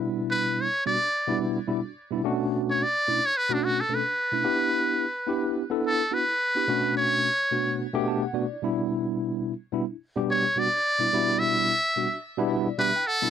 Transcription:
Already playing: tine electric piano B2 G3 B3 D4 E4
0.31 muted trumpet B4
0.61 muted trumpet C#5
0.86 tine electric piano B2 G3 B3 D4 F#4, muted trumpet D5
1.28 tine electric piano B2 G3 B3 D4 E4
1.67 tine electric piano B2 G3 B3 D4 E4
2.11 tine electric piano B2 G3 B3 D4 E4
2.24 tine electric piano B2 A3 C#4 D4 F#4
2.71 muted trumpet C#5
2.83 muted trumpet D5
3.08 tine electric piano B2 A3 C#4 D4 E4
3.26 muted trumpet C#5
3.37 muted trumpet B4
3.50 tine electric piano B2 A3 C#4 D4 F#4, muted trumpet D4
3.65 muted trumpet F#4
3.81 muted trumpet A4
3.89 tine electric piano B2 A3 C#4 D4 A4
3.95 muted trumpet B4
4.05 tine electric piano D4 F#4
4.32 tine electric piano B2 A3 C#4 D4 E4
4.44 tine electric piano B3 D4 E4 G4
5.27 tine electric piano B3 D4 E4 G4
5.70 tine electric piano B3 D4 E4 A4
5.86 muted trumpet A4
6.11 tine electric piano B3 D4 E4 F#4, muted trumpet B4
6.27 tine electric piano E4 A4
6.55 tine electric piano B3 D4 E4 G4
6.68 tine electric piano B2 A3 C#4 D4 F#4
6.97 muted trumpet C#5
7.51 tine electric piano B2 A3 B3 D4 F#4
7.93 tine electric piano B2 A3 B3 D4 G4
8.08 tine electric piano A5
8.23 tine electric piano F#5
8.33 tine electric piano B2 A3 B3 D4 F#4 D5
8.50 tine electric piano D4 E4
8.62 tine electric piano B2 G3 B3 D4 E4
9.72 tine electric piano B2 G3 B3 D4 E4
9.89 tine electric piano D4 E4
10.16 tine electric piano B2 G3 B3 D4 G4
10.31 muted trumpet C#5
10.56 tine electric piano B2 G3 B3 D4 F#4, muted trumpet D5
10.99 tine electric piano B2 G3 B3 D4 E4
11.13 tine electric piano B2 G3 B3 D4 E4
11.39 muted trumpet E5
11.96 tine electric piano B2 G3 B3 D4 F#4
12.38 tine electric piano B2 G3 B3 D4 E4
12.50 tine electric piano D5
12.78 tine electric piano B2 G3 B3 D4 G4 E5, muted trumpet B4
12.95 tine electric piano D4 E4 G5
13.07 muted trumpet A4, tine electric piano F#5
13.22 tine electric piano B2 G3 B3 D4 E4

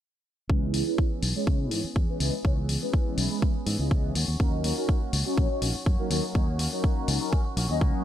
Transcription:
0.49 fingered electric bass C#2, clean electric guitar E3 B3 C#4 G#4, analog polysynth G#3 C#4 E4 B4, kick
0.73 clean electric guitar E3 B3 C#4 G#4, open hi-hat
0.86 analog polysynth G#3 C#4 E4 B4, clean electric guitar B3 C#4 G#4
0.98 clean electric guitar B3 C#4, kick
1.22 fingered electric bass B1, open hi-hat
1.35 analog polysynth G#3 C#4 E4 C#5, clean electric guitar B3 C#4 G#4
1.47 fingered electric bass C#3, clean electric guitar E3, kick
1.59 analog polysynth G#3 C#4 E4 C#5, clean electric guitar B3 C#4 G#4
1.71 fingered electric bass G#2, clean electric guitar E3 B3 C#4 G#4, open hi-hat
1.84 clean electric guitar B3 C#4 G#4, muted fingered electric bass stroke
1.96 fingered electric bass E2, clean electric guitar E3 B3 C#4 G#4, kick
2.08 analog polysynth G#3 C#4 E4 B4
2.20 fingered electric bass C#2, clean electric guitar E3 B3 C#4 G#4, analog polysynth G#3 C#4 E4 B4, open hi-hat
2.32 clean electric guitar B3 C#4 G#4
2.44 fingered electric bass C#2, clean electric guitar E3 B3 C#4 G#4, analog polysynth G#3 C#4 E4 C#5, kick
2.69 clean electric guitar E3 B3 C#4 G#4, open hi-hat
2.81 analog polysynth G#3 C#4 E4 B4, clean electric guitar B3 C#4 G#4
2.93 clean electric guitar E3 B3 C#4 G#4, kick
3.18 fingered electric bass B1, open hi-hat
3.30 analog polysynth G#3 C#4 E4 B4, clean electric guitar B3 C#4 G#4
3.42 kick
3.55 clean electric guitar B3 C#4 G#4
3.66 fingered electric bass G#2, clean electric guitar E3 B3 C#4 G#4, open hi-hat
3.79 fingered electric bass C#2, analog polysynth G#3 C#4 E4 D#5, clean electric guitar B3 C#4 G#4
3.91 clean electric guitar E3 B3 C#4 G#4, kick
4.15 fingered electric bass D#2, clean electric guitar A#3 C#4 F#4, open hi-hat
4.28 fingered electric bass D#2, clean electric guitar C#4 F#4
4.39 fingered electric bass D#2, analog polysynth F#3 C#4 D#4 A#4, clean electric guitar A#3 C#4 F#4, kick
4.64 clean electric guitar A#3 C#4 F#4, open hi-hat
4.77 analog polysynth F#3 C#4 D#4 A#4, clean electric guitar C#4
4.88 clean electric guitar A#3 C#4 F#4, kick
5.13 fingered electric bass C#2, open hi-hat
5.25 analog polysynth F#3 C#4 D#4 C#5, clean electric guitar C#4 F#4
5.37 fingered electric bass A#1, clean electric guitar A#3, kick
5.50 analog polysynth F#3 C#4 D#4 C#5, clean electric guitar C#4 F#4
5.61 fingered electric bass A#1, clean electric guitar A#3 C#4 F#4, open hi-hat
5.74 clean electric guitar C#4 F#4
5.86 fingered electric bass F#2, clean electric guitar A#3 C#4 F#4, kick
5.98 analog polysynth F#3 C#4 D#4 A#4
6.10 fingered electric bass D#2, analog polysynth F#3 C#4 D#4 A#4, clean electric guitar A#3 C#4 F#4, open hi-hat
6.35 fingered electric bass D#2, analog polysynth F#3 C#4 D#4 C#5, clean electric guitar A#3 C#4 F#4, kick
6.59 clean electric guitar A#3 C#4 F#4, open hi-hat
6.72 analog polysynth F#3 C#4 D#4 A#4, clean electric guitar C#4 F#4
6.83 clean electric guitar A#3 C#4 F#4, kick
7.08 fingered electric bass C#2, open hi-hat
7.20 analog polysynth F#3 C#4 D#4 A#4, clean electric guitar C#4 F#4
7.32 clean electric guitar A#3 C#4 F#4, kick
7.45 clean electric guitar C#4 F#4
7.56 fingered electric bass A#1, clean electric guitar A#3 C#4 F#4, open hi-hat
7.69 fingered electric bass D#2, analog polysynth F#3 C#4 D#4 D#5, clean electric guitar C#4 F#4
7.81 fingered electric bass C#2, clean electric guitar A#3 C#4 F#4, kick

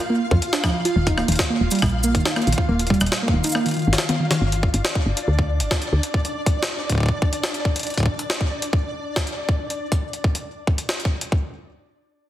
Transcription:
Already playing: synth texture F4 F5
0.10 synth arpeggio sound A#3
0.31 fm bass F2, synth arpeggio sound F4, kick
0.42 closed hi-hat
0.53 synth arpeggio sound D4, snare
0.64 synth arpeggio sound F3, kick, cross-stick
0.85 synth arpeggio sound F4, closed hi-hat
0.96 fm bass D#1, synth arpeggio sound D#3
1.07 synth arpeggio sound D#4, kick, closed hi-hat
1.18 synth arpeggio sound A#3, cross-stick
1.28 fm bass D#1, synth arpeggio sound D#3, closed hi-hat
1.32 closed hi-hat
1.36 kick, snare, closed hi-hat
1.50 synth arpeggio sound A#3
1.61 fm bass D#1
1.71 synth arpeggio sound G3, closed hi-hat, cabasa
1.75 closed hi-hat
1.79 cross-stick, closed hi-hat
1.82 fm bass A#1, synth arpeggio sound A#2, kick, closed hi-hat
1.89 closed hi-hat
2.04 synth arpeggio sound A#3, cabasa
2.15 fm bass D#1, synth arpeggio sound D#3, kick, closed hi-hat
2.25 synth arpeggio sound D#4, snare
2.36 synth arpeggio sound A#3, cross-stick, closed hi-hat
2.42 closed hi-hat
2.47 fm bass A#1, synth arpeggio sound D#3, closed hi-hat
2.53 closed hi-hat
2.58 kick
2.69 fm bass D#1, synth arpeggio sound A#3
2.79 closed hi-hat
2.87 synth arpeggio sound G3, kick, closed hi-hat
2.94 closed hi-hat
3.01 fm bass D#1, synth arpeggio sound A#2, cross-stick, cabasa
3.06 closed hi-hat
3.12 snare
3.23 synth arpeggio sound A#3
3.28 kick
3.33 fm bass D#1, synth arpeggio sound D#3
3.44 synth arpeggio sound D#4, closed hi-hat, cabasa
3.47 cabasa
3.50 cabasa
3.52 synth arpeggio sound A#3, cross-stick, cabasa
3.66 synth arpeggio sound D#3, closed hi-hat
3.68 closed hi-hat
3.71 closed hi-hat
3.74 synth arpeggio sound D#3, closed hi-hat
3.77 closed hi-hat
3.79 closed hi-hat
3.82 closed hi-hat
3.85 fm bass G1, synth arpeggio sound D#3, closed hi-hat
3.93 snare, closed hi-hat
3.98 snare
4.09 synth arpeggio sound D#3, closed hi-hat, high tom
4.20 synth arpeggio sound D#3
4.31 synth arpeggio sound D#3, snare, closed hi-hat
4.41 fm bass G1, synth texture D4 D5
4.52 closed hi-hat
4.63 kick
4.74 fm bass G1, closed hi-hat
4.85 snare
4.95 kick
5.06 fm bass G1
5.17 closed hi-hat
5.28 fm bass D2
5.39 kick
5.60 fm bass G1, closed hi-hat
5.71 kick, snare
5.82 closed hi-hat
5.93 fm bass D2
6.03 closed hi-hat
6.14 kick
6.25 closed hi-hat
6.46 kick, closed hi-hat
6.63 snare
6.90 kick, closed hi-hat
6.92 kick
6.95 kick
6.98 kick
7.00 kick
7.03 kick
7.06 kick
7.08 kick
7.22 kick
7.33 closed hi-hat
7.43 snare
7.54 closed hi-hat
7.65 kick
7.76 closed hi-hat
7.79 closed hi-hat
7.83 closed hi-hat
7.87 closed hi-hat
7.90 closed hi-hat
7.94 kick, closed hi-hat
7.98 kick, closed hi-hat
8.03 kick
8.06 kick
8.19 closed hi-hat
8.30 snare
8.41 kick
8.62 closed hi-hat
8.73 kick
9.16 kick, snare
9.27 closed hi-hat
9.49 kick
9.70 closed hi-hat
9.92 kick, closed hi-hat
10.13 closed hi-hat
10.24 kick
10.35 closed hi-hat
10.67 kick
10.78 closed hi-hat
10.89 snare
11.00 closed hi-hat
11.05 kick
11.21 closed hi-hat
11.32 kick

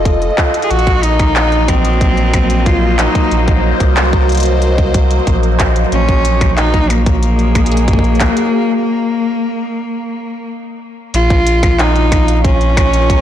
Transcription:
Already playing: sub bass F1, analog synth pad F4 A4 D#5
0.05 kick, closed hi-hat
0.22 closed hi-hat
0.38 kick, clap
0.54 closed hi-hat
0.62 cello G#4, closed hi-hat
0.71 sub bass A#1, analog synth pad A#3, cello F#4, closed hi-hat
0.79 closed hi-hat
0.87 kick, closed hi-hat
1.03 cello D#4, closed hi-hat
1.20 analog synth pad F#3, kick, closed hi-hat, percussion blips
1.36 clap, closed hi-hat
1.52 closed hi-hat
1.68 cello C4, kick, closed hi-hat, percussion blips
1.85 closed hi-hat
2.01 analog synth pad C5, kick, closed hi-hat
2.17 closed hi-hat
2.34 kick, closed hi-hat, percussion blips
2.50 closed hi-hat
2.66 cello F4, kick, closed hi-hat
2.99 cello D#4, clap, closed hi-hat
3.15 kick, closed hi-hat
3.31 sub bass A#1, closed hi-hat
3.48 kick, closed hi-hat
3.80 sub bass C2, kick, closed hi-hat
3.97 clap, closed hi-hat
4.13 kick, closed hi-hat
4.29 closed hi-hat
4.32 closed hi-hat
4.35 closed hi-hat
4.37 closed hi-hat
4.40 closed hi-hat
4.43 closed hi-hat
4.62 closed hi-hat
4.78 kick, closed hi-hat
4.94 kick, closed hi-hat
5.11 closed hi-hat
5.27 sub bass A#1, kick, closed hi-hat
5.43 closed hi-hat
5.60 kick, clap, closed hi-hat
5.76 closed hi-hat
5.92 sub bass A#1, cello C#4, closed hi-hat
6.09 kick, closed hi-hat
6.25 closed hi-hat
6.41 kick, closed hi-hat, percussion blips
6.57 cello D#4, clap, closed hi-hat
6.74 kick, closed hi-hat
6.90 cello A#3, closed hi-hat, percussion blips
7.06 kick, closed hi-hat
7.16 analog synth pad G#4
7.23 closed hi-hat
7.39 closed hi-hat
7.55 kick, closed hi-hat, percussion blips
7.66 closed hi-hat
7.72 closed hi-hat
7.77 closed hi-hat
7.88 kick, closed hi-hat
7.93 kick
7.99 kick
8.04 closed hi-hat
8.15 closed hi-hat
8.20 kick, clap, closed hi-hat
8.37 closed hi-hat
11.14 sub bass A#1, cello F4, closed hi-hat
11.30 kick, closed hi-hat
11.35 analog synth pad F4
11.47 closed hi-hat
11.63 kick, closed hi-hat, percussion blips
11.79 cello D#4, clap, closed hi-hat
11.96 closed hi-hat
12.12 kick, closed hi-hat, percussion blips
12.28 closed hi-hat
12.44 cello C#4, kick, closed hi-hat
12.60 analog synth pad A#4, closed hi-hat
12.77 kick, closed hi-hat, percussion blips
12.94 closed hi-hat
13.10 kick, closed hi-hat

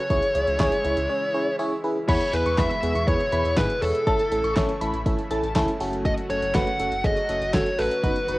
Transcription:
Already playing: analog synth pad C#3, lead electric guitar C#5
0.10 analog synth bass C#2, analog synth pad E3 G#3 E4, fm electric piano C#4 E4 G#4 C#5, kick, closed hi-hat
0.22 closed hi-hat
0.35 analog synth bass C#2, fm electric piano C#4 E4 G#4 C#5, closed hi-hat
0.47 analog synth bass C#2, closed hi-hat
0.60 analog synth bass C#2, fm electric piano C#4 E4 G#4 C#5, kick, snare, clap, closed hi-hat
0.72 closed hi-hat
0.85 analog synth bass C#2, fm electric piano C#4 E4 G#4 C#5, closed hi-hat
0.97 analog synth bass C#2, closed hi-hat
1.09 fm electric piano C#4 E4 G#4 C#5
1.34 fm electric piano C#4 E4 G#4 C#5
1.59 fm electric piano C#4 E4 G#4 C#5
1.84 fm electric piano C#4 E4 G#4 B4
2.08 analog synth bass E2, analog synth pad B2 E3 G#3 E4, fm electric piano B3 E4 G#4 B4, lead electric guitar C#5, synth bell B5, kick, closed hi-hat, crash
2.21 closed hi-hat
2.33 analog synth bass E2, fm electric piano B3 E4 G#4 B4, lead electric guitar B4, closed hi-hat
2.46 analog synth bass E2, synth bell C#6, closed hi-hat
2.58 analog synth bass E2, fm electric piano B3 E4 G#4 B4, lead electric guitar E5, synth bell B5, kick, snare, clap, closed hi-hat
2.70 closed hi-hat
2.83 analog synth bass E2, fm electric piano B3 E4 G#4 B4, closed hi-hat
2.95 analog synth bass E2, synth bell C#6, closed hi-hat
3.08 analog synth bass E2, fm electric piano B3 E4 G#4 B4, lead electric guitar C#5, kick, closed hi-hat
3.20 closed hi-hat
3.32 analog synth bass E2, fm electric piano B3 E4 G#4 B4, synth bell B5, closed hi-hat
3.45 analog synth bass E2, closed hi-hat
3.57 analog synth bass G#2, fm electric piano B3 E4 G#4 B4, lead electric guitar B4, kick, snare, clap, closed hi-hat
3.70 closed hi-hat
3.82 analog synth bass E2, fm electric piano B3 E4 G#4 C#5, lead electric guitar A4, open hi-hat
3.95 closed hi-hat
4.07 analog synth bass A1, analog synth pad C#3 A3, fm electric piano A3 C#4 E4 A4, synth bell A5, kick, closed hi-hat
4.19 closed hi-hat
4.32 analog synth bass A1, fm electric piano A3 C#4 E4 A4, closed hi-hat
4.44 analog synth bass A1, synth bell C#6, closed hi-hat
4.56 analog synth bass A1, fm electric piano A3 C#4 E4 A4, kick, snare, clap, closed hi-hat
4.69 closed hi-hat
4.81 analog synth bass A1, fm electric piano A3 C#4 E4 A4, synth bell B5, closed hi-hat
4.94 analog synth bass A1, closed hi-hat
5.06 analog synth bass A1, fm electric piano A3 C#4 E4 A4, kick, closed hi-hat
5.19 closed hi-hat
5.31 analog synth bass A1, fm electric piano A3 C#4 E4 A4, synth bell A5, closed hi-hat
5.43 analog synth bass A1, closed hi-hat
5.56 analog synth bass C#2, fm electric piano A3 C#4 E4 A4, kick, snare, clap, closed hi-hat
5.68 closed hi-hat
5.80 analog synth bass F#1, analog synth pad F#3 F#4, fm electric piano A3 C#4 F#4 A4, open hi-hat
5.93 closed hi-hat
6.05 lead electric guitar D#5, kick, closed hi-hat
6.18 closed hi-hat
6.30 analog synth bass F#1, fm electric piano A3 C#4 F#4 A4, lead electric guitar C#5, closed hi-hat
6.42 analog synth bass F#1, closed hi-hat
6.55 analog synth bass F#1, fm electric piano A3 C#4 F#4 B4, lead electric guitar F#5, kick, snare, clap, closed hi-hat
6.67 closed hi-hat
6.79 analog synth bass F#1, fm electric piano A3 C#4 F#4 A4, closed hi-hat
6.92 analog synth bass F#1, closed hi-hat
7.04 analog synth bass F#1, fm electric piano A3 C#4 F#4 G#4, lead electric guitar D#5, kick, closed hi-hat
7.17 closed hi-hat
7.29 analog synth bass F#1, fm electric piano A3 C#4 F#4 A4, closed hi-hat
7.41 analog synth bass F#1, closed hi-hat
7.54 analog synth bass F#1, fm electric piano A3 C#4 F#4 A4, lead electric guitar C#5, kick, snare, clap, closed hi-hat
7.66 closed hi-hat
7.79 analog synth bass A1, fm electric piano A3 C#4 F#4 A4, lead electric guitar B4, open hi-hat
7.91 closed hi-hat
8.03 analog synth bass F#1, analog synth pad D#3 B3, fm electric piano B3 D#4 F#4 B4, kick, closed hi-hat
8.16 closed hi-hat
8.28 analog synth bass F#1, fm electric piano B3 D#4 F#4 B4, closed hi-hat

